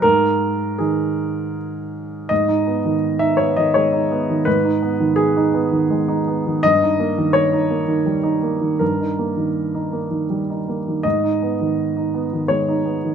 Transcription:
0.02 2.27 G#2 medium
0.02 0.79 A#4 medium
0.78 2.31 D#3 soft
0.78 1.55 G#4 medium
2.29 4.42 G#2 soft
2.29 3.20 D#5 medium
2.48 2.77 D#4 soft
2.67 2.96 B3 soft
2.85 3.43 D#3 soft
3.19 3.49 D#4 soft
3.19 3.38 E5 medium
3.37 3.68 B3 soft
3.37 3.56 C#5 medium
3.57 3.86 D#3 soft
3.57 3.75 D#5 medium
3.74 4.04 G#3 soft
3.74 4.46 C#5 medium
3.92 4.21 D#4 soft
4.12 4.40 B3 soft
4.30 4.57 D#3 soft
4.45 6.60 G#2 medium
4.45 5.17 B4 medium
4.65 4.93 D#4 soft
4.82 5.11 B3 soft
5.00 5.58 D#3 soft
5.16 6.63 G#4 medium
5.37 5.65 D#4 soft
5.54 5.83 B3 soft
5.72 6.01 D#3 soft
5.90 6.19 G#3 soft
6.08 6.38 D#4 soft
6.28 6.57 B3 soft
6.46 6.64 D#3 soft
6.63 8.77 G2 medium
6.63 7.34 D#5 medium
6.83 7.11 D#4 soft
7.00 7.28 A#3 soft
7.18 7.74 D#3 soft
7.33 8.80 C#5 medium
7.53 7.81 D#4 soft
7.70 7.99 A#3 soft
7.88 8.18 D#3 soft
8.06 8.36 G3 soft
8.23 8.54 D#4 soft
8.42 8.73 A#3 soft
8.61 8.92 D#3 soft
8.79 11.00 G2 soft
8.79 10.30 A#4 medium
9.01 9.31 D#4 soft
9.19 9.49 A#3 soft
9.37 9.97 D#3 soft
9.75 10.05 D#4 soft
9.92 10.23 A#3 soft
10.11 10.41 D#3 soft
10.30 10.60 G3 soft
10.50 10.79 D#4 soft
10.69 10.98 A#3 soft
10.88 11.05 D#3 soft
11.03 13.15 G#2 soft
11.03 12.49 D#5 medium
11.24 11.53 D#4 soft
11.42 11.71 B3 soft
11.61 12.18 D#3 soft
11.97 12.25 D#4 soft
12.14 12.43 B3 soft
12.33 12.61 D#3 soft
12.48 12.78 G#3 soft
12.48 13.15 C#5 medium
12.69 12.96 D#4 soft
12.85 13.13 B3 soft
13.05 13.15 D#3 soft

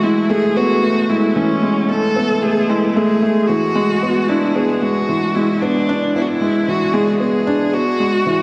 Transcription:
0.00 1.36 E3 medium
0.00 0.03 G#3 medium
0.00 0.29 G#3 medium
0.00 0.31 E4 medium
0.29 0.55 A3 loud
0.29 0.58 G#4 loud
0.56 0.82 B3 loud
0.56 1.11 F#4 loud
0.83 1.08 A3 medium
1.10 1.35 G#3 medium
1.10 1.37 E4 medium
1.36 1.51 E3 medium
1.36 1.90 C#4 medium
1.63 1.88 G#3 medium
1.89 2.05 A3 medium
1.89 2.44 A4 loud
2.16 2.41 B3 loud
2.42 2.57 A3 medium
2.42 2.71 G#4 loud
2.70 2.95 G#3 loud
2.70 2.98 E4 medium
2.96 3.21 A3 loud
2.96 3.49 G#4 loud
3.22 3.37 A3 medium
3.48 3.64 E3 medium
3.48 4.30 F#4 loud
3.75 4.01 G#3 loud
4.03 4.17 B3 medium
4.29 4.54 D4 loud
4.29 4.57 E4 medium
4.55 4.70 B3 medium
4.55 4.83 G#4 loud
4.81 5.07 G#3 medium
4.81 5.36 F#4 loud
5.09 5.34 E3 medium
5.35 5.60 G#3 medium
5.35 5.63 E4 medium
5.61 5.87 B3 loud
5.61 6.14 D4 loud
5.89 6.13 D4 loud
6.15 6.40 B3 medium
6.15 6.23 E4 medium
6.21 6.30 F#4 medium
6.29 6.71 E4 loud
6.41 6.66 G#3 medium
6.68 6.83 E3 medium
6.68 6.95 F#4 loud
6.94 7.19 G#3 loud
6.94 7.20 G#4 medium
7.20 7.35 B3 medium
7.20 7.75 G#4 medium
7.47 7.72 D4 loud
7.73 7.89 B3 medium
7.73 8.43 F#4 loud
8.00 8.25 G#3 medium
8.26 8.43 E3 medium

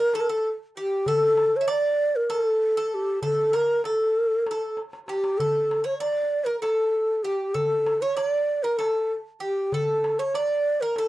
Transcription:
0.00 0.15 A#4 medium
0.00 0.16 A#4 medium
0.14 0.22 A4 medium
0.14 0.28 A4 medium
0.14 darbuka tek medium
0.20 0.31 A#4 medium
0.29 0.48 A4 medium
0.29 0.50 A4 medium
0.45 darbuka ka soft
0.77 1.08 G4 medium
0.77 1.09 G4 medium
1.06 1.58 A4 loud
1.06 1.60 A4 medium
1.06 darbuka dum medium
1.37 darbuka tek medium
1.56 1.72 C#5 medium
1.61 1.67 E5 medium
1.68 2.29 D5 medium
1.68 2.17 D5 loud
1.68 darbuka tek medium
2.16 2.32 A#4 medium
2.30 2.76 A4 medium
2.30 2.44 A#4 medium
2.30 darbuka tek medium
2.44 2.96 A4 medium
2.61 darbuka ka soft
2.77 3.21 A4 medium
2.94 3.23 G4 medium
3.22 3.53 A4 medium
3.22 3.57 A4 medium
3.22 darbuka dum medium
3.53 3.85 A#4 medium
3.53 darbuka tek medium
3.84 4.50 A4 medium
3.84 4.78 A4 medium
3.84 darbuka tek medium
4.46 darbuka tek medium
4.51 4.80 A4 medium
4.77 darbuka tek medium
4.93 darbuka ka medium
5.08 5.39 G4 medium
5.08 5.38 G4 medium
5.08 darbuka tek medium
5.24 darbuka ka medium
5.38 5.87 A4 medium
5.38 5.84 A4 medium
5.38 darbuka dum medium
5.71 darbuka tek medium
5.84 6.00 C#5 medium
5.84 5.98 C#5 medium
5.99 6.46 D5 loud
5.99 6.49 D5 medium
5.99 darbuka tek medium
6.45 6.60 A#4 medium
6.45 6.62 A#4 medium
6.61 7.25 A4 medium
6.61 7.21 A4 medium
6.61 darbuka tek medium
6.94 darbuka ka soft
7.24 7.56 G4 medium
7.24 7.54 G4 medium
7.54 7.98 A4 medium
7.54 8.03 A4 loud
7.54 darbuka dum medium
7.87 darbuka tek medium
8.02 8.16 C#5 medium
8.16 8.28 C#5 loud
8.16 8.65 D5 medium
8.16 darbuka tek medium
8.28 8.65 D5 loud
8.63 8.79 A#4 medium
8.63 8.78 A#4 medium
8.77 9.14 A4 medium
8.77 9.12 A4 medium
8.77 darbuka tek medium
9.10 darbuka ka soft
9.40 9.73 G4 medium
9.40 9.75 G4 medium
9.72 10.21 A4 medium
9.72 darbuka dum medium
10.04 darbuka tek medium
10.19 10.37 C#5 medium
10.19 10.35 C#5 medium
10.34 10.82 D5 medium
10.34 10.83 D5 loud
10.34 darbuka tek medium
10.81 10.98 A#4 medium
10.96 11.08 A4 medium
10.96 darbuka tek medium

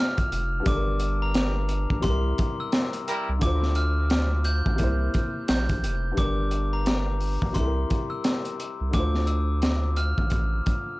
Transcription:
0.00 0.61 D3 medium
0.00 0.62 A3 medium
0.00 0.63 F4 medium
0.00 0.65 C5 medium
0.00 0.29 F6 medium
0.18 kick loud
0.18 closed hi-hat medium
0.32 0.61 F1 medium
0.32 closed hi-hat medium
0.60 1.98 G2 medium
0.60 2.00 G3 medium
0.66 1.87 G1 loud
0.66 2.01 D4 medium
0.66 0.75 A4 medium
0.66 1.19 D6 loud
0.66 kick loud
0.66 closed hi-hat medium
0.75 2.06 A#4 medium
1.00 closed hi-hat medium
1.22 2.00 A#5 medium
1.34 snare loud
1.34 closed hi-hat medium
1.69 closed hi-hat medium
1.90 2.02 A#1 medium
1.90 kick medium
2.00 2.34 C2 loud
2.00 3.37 C3 medium
2.00 3.39 G3 medium
2.00 2.55 C6 medium
2.00 kick loud
2.00 closed hi-hat medium
2.06 3.40 E4 medium
2.06 3.42 A#4 medium
2.38 kick loud
2.38 closed hi-hat medium
2.60 2.72 E6 medium
2.72 snare loud
2.72 closed hi-hat loud
2.93 closed hi-hat medium
3.08 3.30 G3 loud
3.08 3.30 E4 loud
3.08 3.30 A#4 loud
3.08 closed hi-hat medium
3.29 3.40 C2 loud
3.38 4.75 D3 medium
3.38 4.76 A3 medium
3.38 kick loud
3.38 closed hi-hat loud
3.42 4.62 D2 loud
3.42 4.78 F4 medium
3.42 3.73 D6 loud
3.46 4.79 C5 medium
3.63 snare soft
3.75 4.41 F6 medium
3.75 closed hi-hat medium
4.10 snare loud
4.10 closed hi-hat medium
4.44 5.45 G6 medium
4.44 closed hi-hat medium
4.66 4.78 A1 medium
4.66 kick loud
4.75 6.12 C3 medium
4.75 6.14 A#3 medium
4.75 closed hi-hat medium
4.80 5.09 C2 loud
4.80 6.15 E4 medium
4.80 6.17 C5 medium
4.80 kick loud
5.14 kick loud
5.14 closed hi-hat medium
5.48 5.85 A#1 loud
5.48 5.80 G6 medium
5.48 snare loud
5.48 closed hi-hat loud
5.69 kick loud
5.69 closed hi-hat medium
5.84 6.13 F1 loud
5.84 closed hi-hat medium
6.12 7.50 G2 medium
6.12 7.51 G3 medium
6.17 7.38 G1 loud
6.17 7.53 D4 medium
6.17 7.54 A#4 medium
6.17 6.70 D6 loud
6.17 kick loud
6.17 closed hi-hat medium
6.51 closed hi-hat medium
6.73 7.52 A#5 medium
6.86 snare loud
6.86 closed hi-hat medium
7.20 open hi-hat medium
7.42 7.54 A#1 medium
7.42 kick loud
7.52 8.89 C3 medium
7.52 8.90 G3 medium
7.52 8.07 C6 medium
7.52 closed hi-hat medium
7.56 7.86 C2 loud
7.56 8.92 E4 medium
7.56 kick loud
7.60 7.66 A4 medium
7.67 8.96 A#4 medium
7.90 kick loud
7.90 closed hi-hat medium
8.10 8.23 E6 medium
8.24 snare loud
8.24 closed hi-hat loud
8.45 closed hi-hat medium
8.60 closed hi-hat medium
8.81 8.92 C2 medium
8.91 10.14 D2 loud
8.91 11.00 D3 medium
8.91 11.00 A3 medium
8.91 9.25 D6 loud
8.91 kick loud
8.91 closed hi-hat medium
8.97 11.00 F4 medium
8.97 11.00 C5 medium
9.15 snare soft
9.27 9.93 E6 medium
9.27 closed hi-hat medium
9.62 snare loud
9.62 closed hi-hat medium
9.96 10.96 F6 medium
9.96 closed hi-hat medium
10.18 10.30 A1 medium
10.18 kick loud
10.30 10.61 A1 loud
10.30 kick loud
10.30 closed hi-hat medium
10.66 kick loud
10.66 closed hi-hat medium

